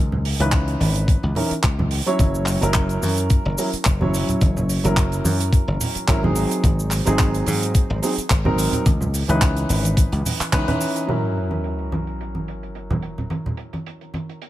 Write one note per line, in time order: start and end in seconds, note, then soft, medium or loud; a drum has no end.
0.00 0.33 C#2 medium
0.12 low conga medium
0.25 open hi-hat loud
0.39 0.75 C#2 medium
0.39 1.33 E3 medium
0.39 1.33 C#4 medium
0.39 1.34 D#4 medium
0.39 1.34 B4 medium
0.39 closed hi-hat medium
0.39 high conga medium
0.52 kick loud
0.52 clap loud
0.52 closed hi-hat medium
0.68 closed hi-hat soft
0.80 1.16 G#1 medium
0.80 open hi-hat loud
0.80 high conga medium
0.96 closed hi-hat medium
1.08 kick loud
1.08 closed hi-hat medium
1.23 1.32 C#2 medium
1.23 high conga medium
1.35 1.51 E3 medium
1.35 1.51 C#4 medium
1.35 1.51 D#4 medium
1.35 1.51 A#4 medium
1.35 open hi-hat loud
1.35 low conga medium
1.51 muted slap bass stroke soft
1.51 closed hi-hat medium
1.63 2.00 C#2 medium
1.63 kick loud
1.63 clap loud
1.63 closed hi-hat medium
1.79 high conga medium
1.79 low conga medium
1.91 open hi-hat loud
2.06 2.58 F#3 medium
2.06 2.59 C#4 medium
2.06 2.59 E4 medium
2.06 2.59 C#5 loud
2.06 closed hi-hat medium
2.19 2.55 F#1 medium
2.19 kick loud
2.19 closed hi-hat medium
2.19 high conga medium
2.19 cabasa medium
2.35 cabasa soft
2.46 clap soft
2.46 open hi-hat loud
2.46 cabasa medium
2.61 2.97 F#1 medium
2.61 3.55 F#3 medium
2.61 3.55 C#4 medium
2.61 3.55 E4 medium
2.61 3.56 A#4 medium
2.61 closed hi-hat medium
2.61 high conga medium
2.61 cabasa medium
2.74 kick loud
2.74 clap loud
2.74 closed hi-hat medium
2.74 cabasa medium
2.89 closed hi-hat soft
2.89 cabasa soft
3.02 3.39 F#2 medium
3.02 open hi-hat loud
3.02 high conga medium
3.02 cabasa medium
3.17 closed hi-hat medium
3.17 cabasa soft
3.30 kick loud
3.30 closed hi-hat medium
3.30 cabasa medium
3.45 3.55 F#1 medium
3.45 high conga medium
3.58 3.68 F#3 medium
3.58 3.68 C#4 medium
3.58 3.68 E4 medium
3.58 3.68 A#4 medium
3.58 open hi-hat loud
3.58 cabasa medium
3.73 muted slap bass stroke soft
3.73 closed hi-hat medium
3.73 cabasa soft
3.85 4.22 F#1 medium
3.85 kick loud
3.85 clap loud
3.85 closed hi-hat medium
3.85 cabasa medium
4.00 4.80 F#3 medium
4.00 4.81 C#4 medium
4.00 4.81 E4 medium
4.00 4.81 C#5 medium
4.00 high conga medium
4.00 low conga medium
4.14 open hi-hat loud
4.14 cabasa medium
4.29 closed hi-hat medium
4.29 low conga medium
4.29 cabasa soft
4.41 4.78 F#1 medium
4.41 kick loud
4.41 closed hi-hat medium
4.41 high conga medium
4.41 cabasa medium
4.57 low conga medium
4.57 cabasa soft
4.69 open hi-hat medium
4.69 cabasa medium
4.84 5.19 F#1 medium
4.84 6.05 F#3 medium
4.84 6.05 C#4 medium
4.84 6.05 E4 medium
4.84 6.06 A#4 medium
4.84 closed hi-hat medium
4.84 high conga medium
4.84 cabasa soft
4.97 kick loud
4.97 clap loud
4.97 closed hi-hat medium
4.97 cabasa medium
5.12 closed hi-hat soft
5.12 cabasa soft
5.24 5.61 F#2 medium
5.24 open hi-hat loud
5.24 high conga medium
5.24 cabasa medium
5.40 closed hi-hat medium
5.40 cabasa medium
5.53 kick loud
5.53 closed hi-hat medium
5.53 cabasa medium
5.68 5.77 F#1 medium
5.68 high conga medium
5.81 open hi-hat loud
5.81 low conga medium
5.81 cabasa medium
5.95 muted slap bass stroke soft
5.95 closed hi-hat medium
5.95 cabasa soft
6.08 6.44 G#1 medium
6.08 6.19 F#3 medium
6.08 6.20 C#4 medium
6.08 6.20 E4 medium
6.08 6.20 A#4 medium
6.08 kick loud
6.08 clap loud
6.08 closed hi-hat medium
6.08 cabasa medium
6.22 7.03 F#3 medium
6.22 7.03 C4 medium
6.22 7.03 D#4 medium
6.22 7.04 G#4 medium
6.22 high conga medium
6.22 low conga medium
6.36 open hi-hat loud
6.36 cabasa medium
6.51 closed hi-hat medium
6.51 cabasa medium
6.63 7.00 G#1 medium
6.63 kick loud
6.63 closed hi-hat medium
6.63 high conga medium
6.63 cabasa medium
6.79 cabasa medium
6.91 clap soft
6.91 open hi-hat medium
6.91 cabasa medium
7.05 7.41 G#1 medium
7.05 7.99 F#3 medium
7.05 7.99 C4 medium
7.05 8.00 D#4 medium
7.05 8.00 G#4 loud
7.05 closed hi-hat medium
7.05 high conga medium
7.05 cabasa medium
7.19 kick loud
7.19 clap loud
7.19 closed hi-hat medium
7.19 cabasa medium
7.34 closed hi-hat soft
7.34 cabasa soft
7.46 7.83 G#2 medium
7.46 open hi-hat loud
7.46 high conga medium
7.46 cabasa medium
7.63 closed hi-hat medium
7.63 cabasa soft
7.75 kick loud
7.75 closed hi-hat medium
7.75 cabasa medium
7.90 7.99 G#1 medium
7.90 high conga medium
8.02 8.12 F#3 medium
8.02 8.12 C4 medium
8.02 8.12 D#4 medium
8.02 8.12 G#4 medium
8.02 open hi-hat loud
8.02 cabasa medium
8.18 muted slap bass stroke soft
8.18 closed hi-hat medium
8.18 cabasa medium
8.30 8.67 G#1 loud
8.30 kick loud
8.30 clap loud
8.30 closed hi-hat medium
8.30 cabasa medium
8.45 8.84 F#3 medium
8.45 8.84 C4 medium
8.45 8.85 D#4 medium
8.45 8.85 A#4 medium
8.45 high conga medium
8.45 low conga medium
8.58 open hi-hat loud
8.58 cabasa medium
8.72 closed hi-hat medium
8.72 low conga medium
8.72 cabasa soft
8.86 9.22 C#2 medium
8.86 kick loud
8.86 closed hi-hat medium
8.86 high conga medium
8.86 cabasa medium
9.01 low conga medium
9.01 cabasa medium
9.14 open hi-hat medium
9.14 cabasa medium
9.28 9.64 C#2 medium
9.28 10.49 E3 medium
9.28 10.49 C#4 medium
9.28 10.50 D#4 medium
9.28 10.50 B4 medium
9.28 closed hi-hat medium
9.28 high conga medium
9.28 cabasa soft
9.42 kick loud
9.42 clap loud
9.42 closed hi-hat medium
9.42 cabasa medium
9.57 closed hi-hat soft
9.57 cabasa soft
9.69 10.06 G#1 medium
9.69 open hi-hat loud
9.69 high conga medium
9.69 cabasa medium
9.85 closed hi-hat medium
9.85 cabasa medium
9.97 kick loud
9.97 closed hi-hat loud
9.97 cabasa medium
10.12 10.21 C#2 medium
10.12 closed hi-hat soft
10.12 high conga medium
10.26 open hi-hat loud
10.26 low conga medium
10.26 cabasa medium
10.40 muted slap bass stroke soft
10.40 clap soft
10.40 closed hi-hat medium
10.40 cabasa medium
10.52 10.64 C#2 medium
10.52 10.64 E3 medium
10.52 10.64 C#4 medium
10.52 10.64 D#4 medium
10.52 10.65 B4 loud
10.52 kick loud
10.52 clap loud
10.52 closed hi-hat medium
10.52 cabasa medium
10.67 11.06 E3 medium
10.67 11.06 C#4 medium
10.67 11.07 D#4 medium
10.67 11.07 B4 medium
10.67 closed hi-hat medium
10.67 high conga medium
10.67 low conga medium
10.80 open hi-hat loud
10.80 cabasa medium
10.96 closed hi-hat medium
10.96 cabasa soft
11.07 14.50 F#3 medium
11.07 14.50 C#4 medium
11.07 14.50 E4 medium
11.07 14.50 A#4 medium
11.07 closed hi-hat medium
11.07 crash medium
11.07 sub drop medium
11.07 high conga medium
11.37 closed hi-hat medium
11.51 closed hi-hat medium
11.51 high conga medium
11.64 closed hi-hat medium
11.79 closed hi-hat soft
11.92 closed hi-hat medium
11.92 high conga medium
12.07 closed hi-hat medium
12.21 closed hi-hat medium
12.35 high conga medium
12.48 closed hi-hat medium
12.63 closed hi-hat medium
12.75 closed hi-hat medium
12.90 high conga medium
12.90 low conga medium
13.02 closed hi-hat medium
13.18 closed hi-hat medium
13.18 low conga medium
13.30 closed hi-hat medium
13.30 high conga medium
13.46 low conga medium
13.57 closed hi-hat medium
13.73 closed hi-hat medium
13.73 high conga medium
13.86 closed hi-hat medium
14.01 closed hi-hat soft
14.14 closed hi-hat medium
14.14 high conga medium
14.29 closed hi-hat medium
14.42 closed hi-hat medium